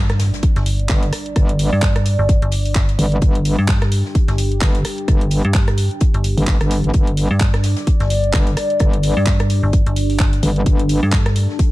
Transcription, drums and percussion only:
0.09 cross-stick, snare, closed hi-hat
0.19 snare, closed hi-hat, open hi-hat
0.34 snare, closed hi-hat
0.43 kick, closed hi-hat
0.56 snare, closed hi-hat
0.66 closed hi-hat, open hi-hat
0.79 closed hi-hat
0.89 kick, snare, clap, closed hi-hat
1.03 closed hi-hat
1.13 cross-stick, closed hi-hat, open hi-hat
1.26 closed hi-hat
1.36 kick, cross-stick, closed hi-hat
1.49 closed hi-hat
1.59 closed hi-hat, open hi-hat
1.82 kick, snare, clap, closed hi-hat
1.95 cross-stick, closed hi-hat
2.06 closed hi-hat, open hi-hat
2.29 kick, closed hi-hat
2.42 closed hi-hat
2.52 closed hi-hat, open hi-hat
2.66 open hi-hat
2.75 kick, snare, clap, closed hi-hat
2.89 closed hi-hat
2.99 closed hi-hat, open hi-hat
3.12 closed hi-hat
3.22 kick, closed hi-hat
3.35 closed hi-hat
3.45 closed hi-hat, open hi-hat
3.68 kick, snare, clap, closed hi-hat
3.82 cross-stick, snare, closed hi-hat
3.92 closed hi-hat, open hi-hat
4.05 snare
4.15 kick, closed hi-hat
4.28 snare, closed hi-hat
4.38 closed hi-hat, open hi-hat
4.52 closed hi-hat
4.61 kick, snare, clap, closed hi-hat
4.75 closed hi-hat
4.85 cross-stick, closed hi-hat, open hi-hat
4.98 closed hi-hat
5.08 kick, cross-stick, closed hi-hat
5.21 closed hi-hat
5.31 closed hi-hat, open hi-hat
5.45 closed hi-hat
5.54 kick, snare, clap, closed hi-hat
5.68 cross-stick, closed hi-hat
5.77 closed hi-hat, open hi-hat
5.91 closed hi-hat
6.00 kick, closed hi-hat
6.14 closed hi-hat
6.24 closed hi-hat, open hi-hat
6.38 open hi-hat
6.47 kick, snare, clap, closed hi-hat
6.61 cross-stick, closed hi-hat
6.71 closed hi-hat, open hi-hat
6.84 closed hi-hat
6.94 kick, closed hi-hat
7.07 closed hi-hat
7.17 closed hi-hat, open hi-hat
7.40 kick, snare, clap, closed hi-hat
7.54 cross-stick, snare, closed hi-hat
7.63 snare, closed hi-hat, open hi-hat
7.76 snare, closed hi-hat
7.87 kick, closed hi-hat
8.00 snare, closed hi-hat
8.10 closed hi-hat, open hi-hat
8.24 closed hi-hat
8.33 kick, snare, clap, closed hi-hat
8.47 closed hi-hat
8.57 cross-stick, closed hi-hat, open hi-hat
8.70 closed hi-hat
8.79 kick, cross-stick, closed hi-hat
8.93 closed hi-hat
9.03 closed hi-hat, open hi-hat
9.26 kick, snare, clap, closed hi-hat
9.39 cross-stick, closed hi-hat
9.50 closed hi-hat, open hi-hat
9.73 kick, closed hi-hat
9.86 closed hi-hat
9.96 closed hi-hat, open hi-hat
10.10 open hi-hat
10.19 kick, snare, clap, closed hi-hat
10.33 closed hi-hat
10.43 closed hi-hat, open hi-hat
10.56 closed hi-hat
10.66 kick, closed hi-hat
10.79 closed hi-hat
10.89 closed hi-hat, open hi-hat
11.12 kick, snare, clap, closed hi-hat
11.26 cross-stick, snare, closed hi-hat
11.36 closed hi-hat, open hi-hat
11.49 snare
11.59 kick, closed hi-hat

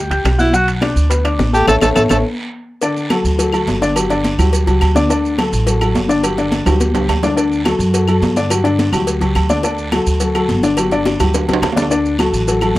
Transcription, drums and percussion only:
0.11 high conga, high timbale, maracas
0.25 high bongo, low bongo, high conga, high timbale, short guiro, claves, maracas
0.39 high bongo, high conga, short guiro, maracas
0.53 high bongo, high conga, long guiro, maracas
0.67 high conga, high timbale, maracas
0.82 high bongo, high conga, high timbale, short guiro, claves, maracas
0.96 short guiro, maracas
1.11 high bongo, high conga, high timbale, long guiro, maracas
1.25 high conga, high timbale, claves, maracas
1.39 high bongo, low bongo, high conga, short guiro, maracas
1.54 short guiro, maracas
1.68 low bongo, high conga, high timbale, long guiro, claves, maracas
1.81 low bongo, high conga, high timbale, long guiro, claves, maracas
1.96 low bongo, high conga, high timbale, long guiro, claves, maracas
2.09 low bongo, high conga, high timbale, long guiro, claves, maracas
2.82 cowbell, high conga, low agogo, long guiro, maracas
2.96 high conga, maracas
3.10 cowbell, high conga, low agogo, short guiro, claves, maracas
3.25 high conga, short guiro, maracas
3.39 cowbell, high conga, low agogo, long guiro, maracas
3.52 high conga, low agogo, claves, maracas
3.67 cowbell, high conga, low timbale, short guiro, maracas
3.82 cowbell, short guiro, maracas
3.96 cowbell, low agogo, long guiro, claves, maracas
4.10 cowbell, high conga, low agogo, maracas
4.24 cowbell, high conga, low agogo, short guiro, maracas
4.39 high conga, low conga, low agogo, short guiro, claves, maracas
4.53 cowbell, high conga, low agogo, long guiro, maracas
4.67 cowbell, high conga, low agogo, maracas
4.81 cowbell, high conga, low agogo, short guiro, claves, maracas
4.96 cowbell, high conga, short guiro, maracas
5.10 cowbell, high conga, low agogo, long guiro, maracas
5.25 high conga, maracas
5.38 cowbell, high conga, low agogo, short guiro, claves, maracas
5.53 high conga, short guiro, maracas
5.67 cowbell, high conga, low agogo, long guiro, maracas
5.81 high conga, low agogo, claves, maracas
5.95 cowbell, high conga, low timbale, short guiro, maracas
6.09 cowbell, short guiro, maracas
6.24 cowbell, low agogo, long guiro, claves, maracas
6.38 cowbell, high conga, low agogo, maracas
6.52 cowbell, high conga, low agogo, short guiro, maracas
6.66 high conga, low conga, high timbale, low agogo, short guiro, claves, maracas
6.80 cowbell, high conga, low agogo, long guiro, maracas
6.95 cowbell, high timbale, low agogo, maracas
7.09 cowbell, low timbale, low agogo, short guiro, claves, maracas
7.23 cowbell, low conga, low timbale, short guiro, maracas
7.37 cowbell, high conga, low agogo, long guiro, maracas
7.52 high conga, maracas
7.65 cowbell, high conga, low agogo, short guiro, claves, maracas
7.80 high conga, short guiro, maracas
7.94 cowbell, high conga, low agogo, long guiro, maracas
8.08 high conga, low agogo, claves, maracas
8.22 cowbell, high conga, low timbale, short guiro, maracas
8.36 cowbell, short guiro, maracas
8.50 cowbell, low agogo, long guiro, claves, maracas
8.65 cowbell, high conga, low agogo, maracas
8.79 cowbell, high conga, low agogo, short guiro, maracas
8.93 high conga, low conga, low agogo, short guiro, claves, maracas
9.07 cowbell, low agogo, long guiro, maracas
9.21 cowbell, high conga, low agogo, maracas
9.35 cowbell, high conga, low agogo, short guiro, claves, maracas
9.49 cowbell, high conga, short guiro, maracas
9.63 cowbell, high conga, low agogo, long guiro, maracas
9.78 high conga, maracas
9.92 cowbell, high conga, low agogo, short guiro, claves, maracas
10.06 short guiro, maracas
10.20 cowbell, high conga, low agogo, long guiro, maracas
10.35 high conga, low agogo, claves, maracas
10.49 cowbell, high conga, short guiro, maracas
10.63 cowbell, high conga, short guiro, maracas
10.77 cowbell, high conga, low agogo, long guiro, claves, maracas
10.91 cowbell, low agogo, maracas
11.05 cowbell, high bongo, high conga, low agogo, short guiro, maracas
11.20 high bongo, high conga, low conga, low agogo, short guiro, claves, maracas
11.34 cowbell, low bongo, high conga, high timbale, low agogo, long guiro, maracas
11.48 cowbell, low bongo, high conga, low agogo, maracas
11.53 high timbale
11.62 cowbell, low bongo, high conga, low timbale, low agogo, short guiro, claves, maracas
11.72 low timbale
11.77 cowbell, low bongo, high conga, short guiro, maracas
11.82 low timbale
11.91 cowbell, low agogo, long guiro, maracas
12.05 high conga, maracas
12.19 cowbell, high conga, low agogo, short guiro, claves, maracas
12.33 high conga, short guiro, maracas
12.47 cowbell, high conga, low agogo, long guiro, maracas
12.61 high conga, low agogo, claves, maracas
12.75 high conga

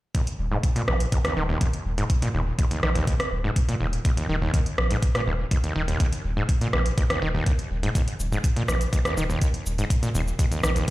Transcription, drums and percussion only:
0.15 kick, closed hi-hat
0.27 closed hi-hat
0.63 kick, closed hi-hat
0.76 closed hi-hat
0.88 cross-stick
1.00 closed hi-hat
1.12 kick, closed hi-hat
1.25 cross-stick, closed hi-hat
1.61 kick, closed hi-hat
1.73 closed hi-hat
1.98 closed hi-hat
2.10 kick, closed hi-hat
2.22 closed hi-hat
2.59 kick, closed hi-hat
2.71 closed hi-hat
2.83 cross-stick
2.95 closed hi-hat
3.07 kick, closed hi-hat
3.20 cross-stick, closed hi-hat
3.56 kick, closed hi-hat
3.69 closed hi-hat
3.93 closed hi-hat
4.05 kick, closed hi-hat
4.17 closed hi-hat
4.54 kick, closed hi-hat
4.66 closed hi-hat
4.78 cross-stick
4.91 closed hi-hat
5.02 kick, closed hi-hat
5.15 cross-stick, closed hi-hat
5.51 kick, closed hi-hat
5.64 closed hi-hat
5.88 closed hi-hat
6.00 kick, closed hi-hat
6.13 closed hi-hat
6.49 kick, closed hi-hat
6.61 closed hi-hat
6.73 cross-stick
6.86 closed hi-hat
6.98 kick, closed hi-hat
7.10 cross-stick, closed hi-hat
7.46 kick, closed hi-hat
7.59 closed hi-hat
7.83 closed hi-hat
7.95 kick, closed hi-hat, shaker
8.08 closed hi-hat
8.20 shaker
8.32 shaker
8.44 kick, closed hi-hat, shaker
8.56 closed hi-hat
8.68 cross-stick, shaker
8.81 closed hi-hat, shaker
8.93 kick, closed hi-hat, shaker
9.05 cross-stick, closed hi-hat, shaker
9.18 shaker
9.30 shaker
9.42 kick, closed hi-hat, shaker
9.54 closed hi-hat
9.66 shaker
9.78 closed hi-hat, shaker
9.90 kick, closed hi-hat, shaker
10.03 closed hi-hat, shaker
10.15 shaker
10.28 shaker
10.39 kick, closed hi-hat, shaker
10.52 closed hi-hat, shaker
10.63 cross-stick, shaker
10.76 closed hi-hat, shaker

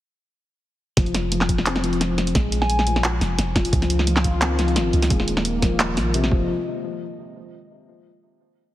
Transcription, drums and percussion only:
0.97 kick, snare, closed hi-hat
1.06 open hi-hat
1.14 snare, closed hi-hat
1.32 closed hi-hat
1.41 clap, snare
1.49 kick, closed hi-hat
1.58 snare
1.66 clap, closed hi-hat
1.76 snare
1.84 closed hi-hat
1.93 open hi-hat
2.01 snare, closed hi-hat
2.18 snare, closed hi-hat
2.27 open hi-hat
2.35 kick, snare, closed hi-hat
2.52 closed hi-hat
2.62 snare
2.70 closed hi-hat
2.79 snare
2.87 closed hi-hat
2.96 snare
3.04 clap, open hi-hat
3.21 snare, open hi-hat
3.39 snare, closed hi-hat
3.55 kick, snare, closed hi-hat
3.65 open hi-hat
3.73 kick, closed hi-hat
3.82 snare, open hi-hat
3.90 closed hi-hat
3.99 snare
4.07 closed hi-hat
4.16 clap, snare
4.24 kick, closed hi-hat
4.42 clap, snare, closed hi-hat
4.59 snare, closed hi-hat
4.68 open hi-hat
4.76 snare, closed hi-hat
4.93 closed hi-hat
5.02 snare, open hi-hat
5.10 kick, closed hi-hat
5.20 snare
5.28 closed hi-hat
5.37 snare
5.45 closed hi-hat
5.62 kick, snare, closed hi-hat
5.80 clap, snare, open hi-hat
5.97 snare, open hi-hat
6.14 closed hi-hat
6.24 snare
6.32 kick

